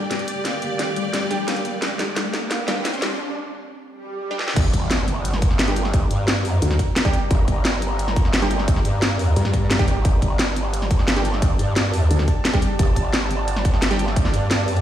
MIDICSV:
0, 0, Header, 1, 11, 480
1, 0, Start_track
1, 0, Key_signature, -2, "minor"
1, 0, Tempo, 342857
1, 630, Time_signature, 4, 2, 24, 8
1, 20738, End_track
2, 0, Start_track
2, 0, Title_t, "String section"
2, 0, Program_c, 0, 48
2, 0, Note_on_c, 0, 67, 83
2, 0, Note_on_c, 0, 74, 85
2, 3948, Note_on_c, 0, 84, 75
2, 4469, Note_off_c, 0, 67, 0
2, 4469, Note_off_c, 0, 74, 0
2, 4470, Note_off_c, 0, 84, 0
2, 20738, End_track
3, 0, Start_track
3, 0, Title_t, "Ambient pad"
3, 0, Program_c, 1, 92
3, 0, Note_on_c, 1, 55, 83
3, 0, Note_on_c, 1, 62, 76
3, 0, Note_on_c, 1, 69, 92
3, 2512, Note_off_c, 1, 62, 0
3, 2549, Note_on_c, 1, 60, 77
3, 4414, Note_off_c, 1, 69, 0
3, 4415, Note_off_c, 1, 55, 0
3, 4450, Note_off_c, 1, 60, 0
3, 6389, Note_on_c, 1, 67, 88
3, 6389, Note_on_c, 1, 74, 80
3, 6389, Note_on_c, 1, 82, 95
3, 14038, Note_off_c, 1, 82, 0
3, 14071, Note_on_c, 1, 81, 95
3, 20738, Note_off_c, 1, 67, 0
3, 20738, Note_off_c, 1, 74, 0
3, 20738, Note_off_c, 1, 81, 0
3, 20738, End_track
4, 0, Start_track
4, 0, Title_t, "Synth stab"
4, 0, Program_c, 2, 62
4, 1829, Note_on_c, 2, 55, 89
4, 1829, Note_on_c, 2, 67, 101
4, 1830, Note_on_c, 2, 62, 83
4, 1899, Note_off_c, 2, 55, 0
4, 1899, Note_off_c, 2, 62, 0
4, 1899, Note_off_c, 2, 67, 0
4, 3749, Note_on_c, 2, 55, 93
4, 3749, Note_on_c, 2, 62, 87
4, 3749, Note_on_c, 2, 67, 103
4, 3819, Note_off_c, 2, 55, 0
4, 3819, Note_off_c, 2, 62, 0
4, 3819, Note_off_c, 2, 67, 0
4, 6029, Note_on_c, 2, 62, 86
4, 6030, Note_on_c, 2, 55, 99
4, 6030, Note_on_c, 2, 67, 100
4, 6375, Note_off_c, 2, 55, 0
4, 6375, Note_off_c, 2, 62, 0
4, 6375, Note_off_c, 2, 67, 0
4, 7949, Note_on_c, 2, 62, 89
4, 7950, Note_on_c, 2, 55, 94
4, 7950, Note_on_c, 2, 67, 103
4, 9841, Note_off_c, 2, 55, 0
4, 9841, Note_off_c, 2, 62, 0
4, 9841, Note_off_c, 2, 67, 0
4, 9869, Note_on_c, 2, 67, 104
4, 9870, Note_on_c, 2, 55, 96
4, 9870, Note_on_c, 2, 62, 86
4, 11761, Note_off_c, 2, 55, 0
4, 11761, Note_off_c, 2, 62, 0
4, 11761, Note_off_c, 2, 67, 0
4, 11790, Note_on_c, 2, 55, 94
4, 11790, Note_on_c, 2, 62, 87
4, 11791, Note_on_c, 2, 67, 107
4, 13681, Note_off_c, 2, 55, 0
4, 13681, Note_off_c, 2, 62, 0
4, 13681, Note_off_c, 2, 67, 0
4, 13709, Note_on_c, 2, 67, 106
4, 13710, Note_on_c, 2, 55, 91
4, 13710, Note_on_c, 2, 62, 87
4, 15601, Note_off_c, 2, 55, 0
4, 15601, Note_off_c, 2, 62, 0
4, 15601, Note_off_c, 2, 67, 0
4, 15629, Note_on_c, 2, 62, 87
4, 15630, Note_on_c, 2, 55, 92
4, 15630, Note_on_c, 2, 67, 106
4, 17521, Note_off_c, 2, 55, 0
4, 17521, Note_off_c, 2, 62, 0
4, 17521, Note_off_c, 2, 67, 0
4, 17549, Note_on_c, 2, 62, 89
4, 17550, Note_on_c, 2, 55, 95
4, 17550, Note_on_c, 2, 67, 99
4, 19441, Note_off_c, 2, 55, 0
4, 19441, Note_off_c, 2, 62, 0
4, 19441, Note_off_c, 2, 67, 0
4, 19469, Note_on_c, 2, 55, 94
4, 19469, Note_on_c, 2, 62, 88
4, 19469, Note_on_c, 2, 67, 103
4, 20738, Note_off_c, 2, 55, 0
4, 20738, Note_off_c, 2, 62, 0
4, 20738, Note_off_c, 2, 67, 0
4, 20738, End_track
5, 0, Start_track
5, 0, Title_t, "Felt piano"
5, 0, Program_c, 3, 0
5, 151, Note_on_c, 3, 55, 71
5, 247, Note_off_c, 3, 55, 0
5, 631, Note_on_c, 3, 58, 82
5, 727, Note_off_c, 3, 58, 0
5, 870, Note_on_c, 3, 58, 73
5, 1015, Note_off_c, 3, 58, 0
5, 1350, Note_on_c, 3, 55, 72
5, 1447, Note_off_c, 3, 55, 0
5, 1590, Note_on_c, 3, 55, 80
5, 1687, Note_off_c, 3, 55, 0
5, 2070, Note_on_c, 3, 58, 77
5, 2167, Note_off_c, 3, 58, 0
5, 2310, Note_on_c, 3, 58, 78
5, 2455, Note_off_c, 3, 58, 0
5, 2789, Note_on_c, 3, 55, 79
5, 2887, Note_off_c, 3, 55, 0
5, 3030, Note_on_c, 3, 55, 74
5, 3127, Note_off_c, 3, 55, 0
5, 3509, Note_on_c, 3, 58, 85
5, 3606, Note_off_c, 3, 58, 0
5, 3750, Note_on_c, 3, 58, 81
5, 3895, Note_off_c, 3, 58, 0
5, 4230, Note_on_c, 3, 55, 75
5, 4327, Note_off_c, 3, 55, 0
5, 20738, End_track
6, 0, Start_track
6, 0, Title_t, "Wobble bass"
6, 0, Program_c, 4, 39
6, 9271, Note_on_c, 4, 38, 98
6, 9491, Note_off_c, 4, 38, 0
6, 13111, Note_on_c, 4, 43, 98
6, 13811, Note_off_c, 4, 43, 0
6, 16950, Note_on_c, 4, 38, 97
6, 17171, Note_off_c, 4, 38, 0
6, 20738, End_track
7, 0, Start_track
7, 0, Title_t, "Wobble bass"
7, 0, Program_c, 5, 39
7, 6389, Note_on_c, 5, 31, 98
7, 6610, Note_off_c, 5, 31, 0
7, 6629, Note_on_c, 5, 31, 96
7, 8530, Note_off_c, 5, 31, 0
7, 8550, Note_on_c, 5, 43, 97
7, 9251, Note_off_c, 5, 43, 0
7, 10230, Note_on_c, 5, 31, 97
7, 10451, Note_off_c, 5, 31, 0
7, 10470, Note_on_c, 5, 31, 100
7, 12371, Note_off_c, 5, 31, 0
7, 12390, Note_on_c, 5, 43, 98
7, 13091, Note_off_c, 5, 43, 0
7, 13829, Note_on_c, 5, 33, 92
7, 14051, Note_off_c, 5, 33, 0
7, 14070, Note_on_c, 5, 31, 97
7, 14291, Note_off_c, 5, 31, 0
7, 14310, Note_on_c, 5, 31, 101
7, 16211, Note_off_c, 5, 31, 0
7, 16229, Note_on_c, 5, 43, 100
7, 16930, Note_off_c, 5, 43, 0
7, 17909, Note_on_c, 5, 31, 97
7, 18130, Note_off_c, 5, 31, 0
7, 18149, Note_on_c, 5, 31, 101
7, 20050, Note_off_c, 5, 31, 0
7, 20070, Note_on_c, 5, 43, 101
7, 20738, Note_off_c, 5, 43, 0
7, 20738, End_track
8, 0, Start_track
8, 0, Title_t, "Impact"
8, 0, Program_c, 6, 103
8, 6390, Note_on_c, 6, 60, 76
8, 8310, Note_off_c, 6, 60, 0
8, 20738, End_track
9, 0, Start_track
9, 0, Title_t, "Riser"
9, 0, Program_c, 7, 103
9, 0, Note_on_c, 7, 60, 80
9, 4470, Note_off_c, 7, 60, 0
9, 20738, End_track
10, 0, Start_track
10, 0, Title_t, "Swell"
10, 0, Program_c, 8, 103
10, 5429, Note_on_c, 8, 60, 81
10, 6390, Note_off_c, 8, 60, 0
10, 20738, End_track
11, 0, Start_track
11, 0, Title_t, "Drums"
11, 150, Note_on_c, 9, 38, 55
11, 150, Note_on_c, 9, 42, 92
11, 269, Note_off_c, 9, 42, 0
11, 269, Note_on_c, 9, 42, 36
11, 290, Note_off_c, 9, 38, 0
11, 389, Note_off_c, 9, 42, 0
11, 389, Note_on_c, 9, 42, 72
11, 529, Note_off_c, 9, 42, 0
11, 629, Note_on_c, 9, 38, 59
11, 629, Note_on_c, 9, 42, 95
11, 769, Note_off_c, 9, 38, 0
11, 769, Note_off_c, 9, 42, 0
11, 869, Note_on_c, 9, 42, 67
11, 1009, Note_off_c, 9, 42, 0
11, 1109, Note_on_c, 9, 38, 65
11, 1109, Note_on_c, 9, 42, 95
11, 1249, Note_off_c, 9, 38, 0
11, 1249, Note_off_c, 9, 42, 0
11, 1349, Note_on_c, 9, 42, 62
11, 1489, Note_off_c, 9, 42, 0
11, 1589, Note_on_c, 9, 38, 66
11, 1589, Note_on_c, 9, 42, 91
11, 1729, Note_off_c, 9, 38, 0
11, 1729, Note_off_c, 9, 42, 0
11, 1829, Note_on_c, 9, 42, 64
11, 1969, Note_off_c, 9, 42, 0
11, 2070, Note_on_c, 9, 38, 68
11, 2070, Note_on_c, 9, 42, 89
11, 2190, Note_off_c, 9, 42, 0
11, 2190, Note_on_c, 9, 42, 36
11, 2210, Note_off_c, 9, 38, 0
11, 2310, Note_off_c, 9, 42, 0
11, 2310, Note_on_c, 9, 42, 67
11, 2450, Note_off_c, 9, 42, 0
11, 2549, Note_on_c, 9, 38, 73
11, 2549, Note_on_c, 9, 42, 89
11, 2689, Note_off_c, 9, 38, 0
11, 2689, Note_off_c, 9, 42, 0
11, 2790, Note_on_c, 9, 38, 78
11, 2790, Note_on_c, 9, 42, 68
11, 2930, Note_off_c, 9, 38, 0
11, 2930, Note_off_c, 9, 42, 0
11, 3030, Note_on_c, 9, 38, 80
11, 3030, Note_on_c, 9, 42, 92
11, 3170, Note_off_c, 9, 38, 0
11, 3170, Note_off_c, 9, 42, 0
11, 3270, Note_on_c, 9, 38, 76
11, 3270, Note_on_c, 9, 42, 64
11, 3410, Note_off_c, 9, 38, 0
11, 3410, Note_off_c, 9, 42, 0
11, 3510, Note_on_c, 9, 38, 83
11, 3510, Note_on_c, 9, 42, 89
11, 3650, Note_off_c, 9, 38, 0
11, 3650, Note_off_c, 9, 42, 0
11, 3750, Note_on_c, 9, 38, 88
11, 3750, Note_on_c, 9, 42, 65
11, 3890, Note_off_c, 9, 38, 0
11, 3890, Note_off_c, 9, 42, 0
11, 3990, Note_on_c, 9, 38, 91
11, 3990, Note_on_c, 9, 42, 89
11, 4110, Note_off_c, 9, 42, 0
11, 4110, Note_on_c, 9, 42, 35
11, 4130, Note_off_c, 9, 38, 0
11, 4229, Note_off_c, 9, 42, 0
11, 4229, Note_on_c, 9, 38, 93
11, 4229, Note_on_c, 9, 42, 67
11, 4369, Note_off_c, 9, 38, 0
11, 4369, Note_off_c, 9, 42, 0
11, 6149, Note_on_c, 9, 38, 65
11, 6269, Note_off_c, 9, 38, 0
11, 6269, Note_on_c, 9, 38, 75
11, 6389, Note_on_c, 9, 36, 122
11, 6390, Note_on_c, 9, 42, 102
11, 6390, Note_on_c, 9, 49, 108
11, 6409, Note_off_c, 9, 38, 0
11, 6529, Note_off_c, 9, 36, 0
11, 6530, Note_off_c, 9, 42, 0
11, 6530, Note_off_c, 9, 49, 0
11, 6629, Note_on_c, 9, 36, 61
11, 6629, Note_on_c, 9, 42, 70
11, 6769, Note_off_c, 9, 36, 0
11, 6769, Note_off_c, 9, 42, 0
11, 6869, Note_on_c, 9, 38, 118
11, 6869, Note_on_c, 9, 42, 101
11, 7009, Note_off_c, 9, 38, 0
11, 7009, Note_off_c, 9, 42, 0
11, 7109, Note_on_c, 9, 42, 68
11, 7249, Note_off_c, 9, 42, 0
11, 7349, Note_on_c, 9, 42, 97
11, 7469, Note_on_c, 9, 40, 49
11, 7489, Note_off_c, 9, 42, 0
11, 7589, Note_on_c, 9, 36, 109
11, 7589, Note_on_c, 9, 42, 71
11, 7609, Note_off_c, 9, 40, 0
11, 7709, Note_on_c, 9, 40, 35
11, 7729, Note_off_c, 9, 36, 0
11, 7729, Note_off_c, 9, 42, 0
11, 7829, Note_on_c, 9, 38, 121
11, 7829, Note_on_c, 9, 42, 98
11, 7849, Note_off_c, 9, 40, 0
11, 7949, Note_off_c, 9, 42, 0
11, 7949, Note_on_c, 9, 42, 37
11, 7969, Note_off_c, 9, 38, 0
11, 8069, Note_off_c, 9, 42, 0
11, 8069, Note_on_c, 9, 42, 73
11, 8190, Note_on_c, 9, 40, 37
11, 8209, Note_off_c, 9, 42, 0
11, 8309, Note_on_c, 9, 42, 94
11, 8310, Note_on_c, 9, 36, 127
11, 8330, Note_off_c, 9, 40, 0
11, 8449, Note_off_c, 9, 42, 0
11, 8450, Note_off_c, 9, 36, 0
11, 8550, Note_on_c, 9, 42, 71
11, 8690, Note_off_c, 9, 42, 0
11, 8790, Note_on_c, 9, 38, 127
11, 8790, Note_on_c, 9, 42, 100
11, 8930, Note_off_c, 9, 38, 0
11, 8930, Note_off_c, 9, 42, 0
11, 9029, Note_on_c, 9, 46, 79
11, 9169, Note_off_c, 9, 46, 0
11, 9269, Note_on_c, 9, 42, 96
11, 9389, Note_on_c, 9, 40, 51
11, 9409, Note_off_c, 9, 42, 0
11, 9509, Note_on_c, 9, 42, 67
11, 9510, Note_on_c, 9, 36, 66
11, 9529, Note_off_c, 9, 40, 0
11, 9649, Note_off_c, 9, 42, 0
11, 9650, Note_off_c, 9, 36, 0
11, 9749, Note_on_c, 9, 38, 125
11, 9749, Note_on_c, 9, 42, 95
11, 9870, Note_off_c, 9, 42, 0
11, 9870, Note_on_c, 9, 36, 113
11, 9870, Note_on_c, 9, 42, 36
11, 9889, Note_off_c, 9, 38, 0
11, 9990, Note_off_c, 9, 42, 0
11, 9990, Note_on_c, 9, 42, 69
11, 10010, Note_off_c, 9, 36, 0
11, 10130, Note_off_c, 9, 42, 0
11, 10230, Note_on_c, 9, 36, 127
11, 10230, Note_on_c, 9, 42, 92
11, 10370, Note_off_c, 9, 36, 0
11, 10370, Note_off_c, 9, 42, 0
11, 10469, Note_on_c, 9, 42, 65
11, 10470, Note_on_c, 9, 36, 65
11, 10609, Note_off_c, 9, 42, 0
11, 10610, Note_off_c, 9, 36, 0
11, 10709, Note_on_c, 9, 38, 124
11, 10709, Note_on_c, 9, 42, 93
11, 10849, Note_off_c, 9, 38, 0
11, 10849, Note_off_c, 9, 42, 0
11, 10949, Note_on_c, 9, 42, 65
11, 11089, Note_off_c, 9, 42, 0
11, 11190, Note_on_c, 9, 42, 93
11, 11310, Note_on_c, 9, 40, 50
11, 11330, Note_off_c, 9, 42, 0
11, 11430, Note_on_c, 9, 36, 114
11, 11430, Note_on_c, 9, 42, 65
11, 11450, Note_off_c, 9, 40, 0
11, 11550, Note_on_c, 9, 40, 34
11, 11570, Note_off_c, 9, 36, 0
11, 11570, Note_off_c, 9, 42, 0
11, 11670, Note_on_c, 9, 38, 127
11, 11670, Note_on_c, 9, 42, 94
11, 11690, Note_off_c, 9, 40, 0
11, 11790, Note_off_c, 9, 42, 0
11, 11790, Note_on_c, 9, 42, 36
11, 11810, Note_off_c, 9, 38, 0
11, 11911, Note_off_c, 9, 42, 0
11, 11911, Note_on_c, 9, 42, 70
11, 12031, Note_on_c, 9, 40, 38
11, 12051, Note_off_c, 9, 42, 0
11, 12150, Note_on_c, 9, 36, 127
11, 12150, Note_on_c, 9, 42, 87
11, 12171, Note_off_c, 9, 40, 0
11, 12271, Note_on_c, 9, 40, 34
11, 12290, Note_off_c, 9, 36, 0
11, 12290, Note_off_c, 9, 42, 0
11, 12390, Note_on_c, 9, 42, 65
11, 12411, Note_off_c, 9, 40, 0
11, 12530, Note_off_c, 9, 42, 0
11, 12630, Note_on_c, 9, 38, 127
11, 12630, Note_on_c, 9, 42, 92
11, 12770, Note_off_c, 9, 38, 0
11, 12770, Note_off_c, 9, 42, 0
11, 12870, Note_on_c, 9, 46, 75
11, 13010, Note_off_c, 9, 46, 0
11, 13110, Note_on_c, 9, 42, 89
11, 13230, Note_on_c, 9, 40, 47
11, 13250, Note_off_c, 9, 42, 0
11, 13349, Note_on_c, 9, 42, 63
11, 13350, Note_on_c, 9, 36, 64
11, 13370, Note_off_c, 9, 40, 0
11, 13489, Note_off_c, 9, 42, 0
11, 13490, Note_off_c, 9, 36, 0
11, 13589, Note_on_c, 9, 38, 123
11, 13589, Note_on_c, 9, 42, 91
11, 13709, Note_off_c, 9, 42, 0
11, 13709, Note_on_c, 9, 42, 35
11, 13710, Note_on_c, 9, 36, 116
11, 13729, Note_off_c, 9, 38, 0
11, 13829, Note_off_c, 9, 42, 0
11, 13829, Note_on_c, 9, 42, 66
11, 13850, Note_off_c, 9, 36, 0
11, 13969, Note_off_c, 9, 42, 0
11, 14069, Note_on_c, 9, 42, 95
11, 14070, Note_on_c, 9, 36, 120
11, 14209, Note_off_c, 9, 42, 0
11, 14210, Note_off_c, 9, 36, 0
11, 14310, Note_on_c, 9, 36, 64
11, 14310, Note_on_c, 9, 42, 66
11, 14450, Note_off_c, 9, 36, 0
11, 14450, Note_off_c, 9, 42, 0
11, 14550, Note_on_c, 9, 38, 123
11, 14550, Note_on_c, 9, 42, 93
11, 14690, Note_off_c, 9, 38, 0
11, 14690, Note_off_c, 9, 42, 0
11, 14790, Note_on_c, 9, 42, 63
11, 14930, Note_off_c, 9, 42, 0
11, 15029, Note_on_c, 9, 42, 92
11, 15149, Note_on_c, 9, 40, 45
11, 15169, Note_off_c, 9, 42, 0
11, 15269, Note_on_c, 9, 36, 107
11, 15269, Note_on_c, 9, 42, 64
11, 15289, Note_off_c, 9, 40, 0
11, 15389, Note_on_c, 9, 40, 32
11, 15409, Note_off_c, 9, 36, 0
11, 15409, Note_off_c, 9, 42, 0
11, 15509, Note_on_c, 9, 38, 121
11, 15509, Note_on_c, 9, 42, 87
11, 15529, Note_off_c, 9, 40, 0
11, 15629, Note_off_c, 9, 42, 0
11, 15629, Note_on_c, 9, 42, 35
11, 15649, Note_off_c, 9, 38, 0
11, 15749, Note_off_c, 9, 42, 0
11, 15749, Note_on_c, 9, 42, 64
11, 15870, Note_on_c, 9, 40, 35
11, 15889, Note_off_c, 9, 42, 0
11, 15989, Note_on_c, 9, 36, 118
11, 15990, Note_on_c, 9, 42, 93
11, 16010, Note_off_c, 9, 40, 0
11, 16129, Note_off_c, 9, 36, 0
11, 16130, Note_off_c, 9, 42, 0
11, 16230, Note_on_c, 9, 42, 72
11, 16370, Note_off_c, 9, 42, 0
11, 16469, Note_on_c, 9, 38, 118
11, 16469, Note_on_c, 9, 42, 96
11, 16609, Note_off_c, 9, 38, 0
11, 16609, Note_off_c, 9, 42, 0
11, 16709, Note_on_c, 9, 46, 81
11, 16849, Note_off_c, 9, 46, 0
11, 16949, Note_on_c, 9, 42, 94
11, 17070, Note_on_c, 9, 40, 47
11, 17089, Note_off_c, 9, 42, 0
11, 17189, Note_on_c, 9, 36, 60
11, 17189, Note_on_c, 9, 42, 68
11, 17210, Note_off_c, 9, 40, 0
11, 17329, Note_off_c, 9, 36, 0
11, 17329, Note_off_c, 9, 42, 0
11, 17430, Note_on_c, 9, 38, 114
11, 17430, Note_on_c, 9, 42, 91
11, 17549, Note_on_c, 9, 36, 105
11, 17550, Note_off_c, 9, 42, 0
11, 17550, Note_on_c, 9, 42, 36
11, 17570, Note_off_c, 9, 38, 0
11, 17670, Note_off_c, 9, 42, 0
11, 17670, Note_on_c, 9, 42, 70
11, 17689, Note_off_c, 9, 36, 0
11, 17810, Note_off_c, 9, 42, 0
11, 17909, Note_on_c, 9, 36, 115
11, 17910, Note_on_c, 9, 42, 96
11, 18049, Note_off_c, 9, 36, 0
11, 18050, Note_off_c, 9, 42, 0
11, 18149, Note_on_c, 9, 36, 60
11, 18149, Note_on_c, 9, 42, 70
11, 18289, Note_off_c, 9, 36, 0
11, 18289, Note_off_c, 9, 42, 0
11, 18389, Note_on_c, 9, 38, 119
11, 18389, Note_on_c, 9, 42, 96
11, 18529, Note_off_c, 9, 38, 0
11, 18529, Note_off_c, 9, 42, 0
11, 18629, Note_on_c, 9, 42, 68
11, 18769, Note_off_c, 9, 42, 0
11, 18869, Note_on_c, 9, 42, 96
11, 18989, Note_on_c, 9, 40, 49
11, 19009, Note_off_c, 9, 42, 0
11, 19109, Note_on_c, 9, 36, 102
11, 19110, Note_on_c, 9, 42, 68
11, 19129, Note_off_c, 9, 40, 0
11, 19230, Note_on_c, 9, 40, 33
11, 19249, Note_off_c, 9, 36, 0
11, 19250, Note_off_c, 9, 42, 0
11, 19350, Note_on_c, 9, 38, 112
11, 19350, Note_on_c, 9, 42, 98
11, 19370, Note_off_c, 9, 40, 0
11, 19470, Note_off_c, 9, 42, 0
11, 19470, Note_on_c, 9, 42, 38
11, 19490, Note_off_c, 9, 38, 0
11, 19590, Note_off_c, 9, 42, 0
11, 19590, Note_on_c, 9, 42, 71
11, 19711, Note_on_c, 9, 40, 35
11, 19730, Note_off_c, 9, 42, 0
11, 19829, Note_on_c, 9, 36, 120
11, 19830, Note_on_c, 9, 42, 102
11, 19851, Note_off_c, 9, 40, 0
11, 19951, Note_on_c, 9, 38, 35
11, 19951, Note_on_c, 9, 40, 34
11, 19969, Note_off_c, 9, 36, 0
11, 19970, Note_off_c, 9, 42, 0
11, 20071, Note_on_c, 9, 42, 73
11, 20091, Note_off_c, 9, 38, 0
11, 20091, Note_off_c, 9, 40, 0
11, 20211, Note_off_c, 9, 42, 0
11, 20311, Note_on_c, 9, 38, 119
11, 20311, Note_on_c, 9, 42, 101
11, 20451, Note_off_c, 9, 38, 0
11, 20451, Note_off_c, 9, 42, 0
11, 20551, Note_on_c, 9, 46, 80
11, 20671, Note_on_c, 9, 42, 39
11, 20691, Note_off_c, 9, 46, 0
11, 20738, Note_off_c, 9, 42, 0
11, 20738, End_track
0, 0, End_of_file